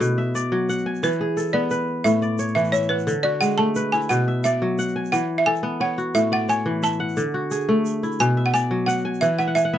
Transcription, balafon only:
1.04 1.51 B4 medium
1.53 2.06 D5 medium
2.04 2.54 E5 medium
2.55 2.73 E5 medium
2.72 2.91 C#5 medium
2.89 3.06 B4 medium
3.23 3.40 D5 medium
3.41 3.59 F#5 loud
3.58 3.94 A5 medium
3.92 4.00 G#5 loud
4.09 4.42 F#5 loud
4.44 4.60 E5 medium
5.12 5.39 F#5 medium
5.38 5.47 E5 medium
5.46 5.82 G#5 loud
5.81 6.16 F#5 medium
6.15 6.33 E5 medium
6.33 6.40 F#5 medium
6.49 6.81 G#5 loud
6.84 7.15 A5 medium
8.20 8.46 G#5 loud
8.46 8.54 F#5 medium
8.54 8.89 G#5 loud
8.86 9.19 F#5 medium
9.21 9.39 E5 medium
9.39 9.56 F#5 medium
9.55 9.78 E5 medium

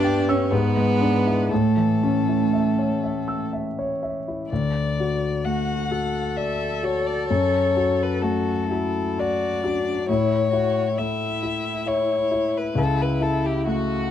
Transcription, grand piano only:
0.00 0.48 G2 medium
0.00 0.54 G3 soft
0.00 0.54 B3 soft
0.00 0.53 G4 soft
0.00 0.19 B4 soft
0.00 0.53 E5 soft
0.04 0.42 G5 soft
0.29 0.52 E6 medium
0.52 1.47 G#2 medium
0.77 1.15 G#3 soft
1.01 1.40 D4 soft
1.27 1.51 E4 soft
1.50 4.46 A2 soft
1.77 2.17 E3 soft
2.03 2.43 C#4 soft
2.29 2.68 E4 soft
2.53 2.93 E5 soft
2.79 3.18 C#5 soft
3.04 3.42 E5 soft
3.28 3.67 E6 soft
3.53 3.92 E5 soft
3.79 4.18 C#5 soft
4.03 4.41 E5 soft
4.28 4.51 E4 soft
4.53 7.26 D2 soft
5.00 5.73 F#4 soft
5.45 6.18 A3 soft
5.91 6.64 F#4 soft
6.37 7.11 D5 soft
6.83 7.29 F#4 soft
7.30 10.05 F#2 soft
7.77 8.51 F#4 soft
8.22 8.99 A3 soft
8.71 9.46 F#4 soft
9.19 9.91 D5 soft
9.64 10.08 F#4 soft
10.09 12.74 A2 soft
10.53 11.25 E4 soft
10.99 11.71 A3 soft
11.43 12.15 E4 soft
11.86 12.59 E5 soft
12.31 12.77 E4 soft
12.75 14.11 C#2 soft
13.21 13.93 E4 soft
13.67 14.11 A3 soft

